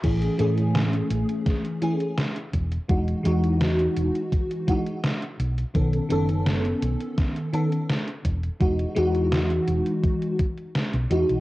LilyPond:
<<
  \new Staff \with { instrumentName = "FM electric piano" } { \time 4/4 \key e \major \tempo 4 = 84 <e a cis' gis'>8 <e a cis' gis'>2 <e a cis' gis'>8 r4 | <e gis dis' fis'>8 <e gis dis' fis'>2 <e gis dis' fis'>8 r4 | <dis b cis' a'>8 <dis b cis' a'>2 <dis b cis' a'>8 r4 | <e gis dis' fis'>8 <e gis dis' fis'>2 r4 <e gis dis' fis'>8 | }
  \new Staff \with { instrumentName = "Fingered electric bass" } { \clef bass \time 4/4 \key e \major a,,16 r16 a,8. r16 a,,16 r4. r16 e,,16 r16 | e,,16 r16 e,8. r16 e,,16 r4. r16 b,,16 r16 | b,,16 r16 fis,,8. r16 b,,16 r4. r16 e,,16 r16 | e,,16 r16 e,8. r16 e,,16 r4. b,,16 e,16 b,,16 | }
  \new DrumStaff \with { instrumentName = "Drums" } \drummode { \time 4/4 <cymc hh bd>16 hh16 hh16 hh16 <hh sn>16 hh16 hh16 hh16 <hh bd sn>16 hh16 hh16 hh16 <hh sn>16 hh16 <hh bd>16 hh16 | <hh bd>16 hh16 hh16 hh16 <hh sn>16 hh16 hh16 hh16 <hh bd>16 hh16 <hh bd>16 hh16 <hh sn>16 hh16 hh16 hh16 | <hh bd>16 hh16 hh16 hh16 <hh sn>16 hh16 hh16 hh16 <hh bd sn>16 hh16 hh16 hh16 <hh sn>16 hh16 <hh bd>16 hh16 | <hh bd>16 hh16 hh16 hh16 <hh sn>16 hh16 hh16 hh16 <hh bd>16 hh16 <hh bd>16 hh16 <hh sn>16 hh16 hh16 hh16 | }
>>